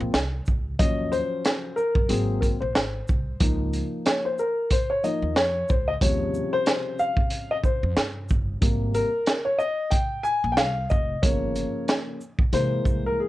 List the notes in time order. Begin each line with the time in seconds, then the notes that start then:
Already playing: F3 A#3 C4 F4
0.00 A#1
0.14 C2, snare, closed hi-hat
0.46 C#2, kick, shaker
0.79 D#2 F3 F#3 C#4 D#5, kick, closed hi-hat
1.12 C5, closed hi-hat, shaker
1.45 snare, closed hi-hat
1.76 A#4, shaker
1.95 F#2, kick
2.09 G#1 F#3 A#3 C4 G#4, closed hi-hat
2.41 A#4, kick, closed hi-hat, shaker
2.61 A#1 C5
2.75 G#1, snare, closed hi-hat
3.08 C2, kick, shaker
3.40 C#2 F3 A#3 D#4, kick, closed hi-hat
3.73 closed hi-hat, shaker
4.06 C#5, snare, closed hi-hat
4.25 C5
4.38 A#4, shaker
4.70 C5, kick, closed hi-hat
4.90 C#5
5.03 F3 A#3 D#4 D#5, closed hi-hat, shaker
5.22 D#2
5.36 F2 C#5, snare, closed hi-hat
5.69 C#2 C5, kick, shaker
5.88 D#5
6.01 D#2 C3 C#3 F3 G3 C#5, kick, closed hi-hat
6.34 shaker
6.53 C5
6.66 snare, closed hi-hat
6.99 F5, shaker
7.17 kick
7.30 closed hi-hat
7.51 D#5
7.64 C5, kick, shaker
7.83 F2
7.97 snare, closed hi-hat
8.29 G1, kick, shaker
8.61 G#1 C3 G3 A#3, kick, closed hi-hat
8.94 A#4, closed hi-hat, shaker
9.26 snare, closed hi-hat
9.45 C#5
9.59 D#5, shaker
9.90 G5, kick, closed hi-hat
10.23 G#5, shaker
10.44 A#1
10.52 G5
10.57 C2 F5, snare, closed hi-hat
10.90 F1 D#5, kick, shaker
11.22 G1 C#3 F3 A#3 C#5, kick, closed hi-hat
11.56 closed hi-hat, shaker
11.88 snare, closed hi-hat
12.21 shaker
12.39 kick
12.52 C3 E3 G#3 A#3 C5, closed hi-hat
12.85 C2, kick, shaker
13.06 A#4
13.20 G#4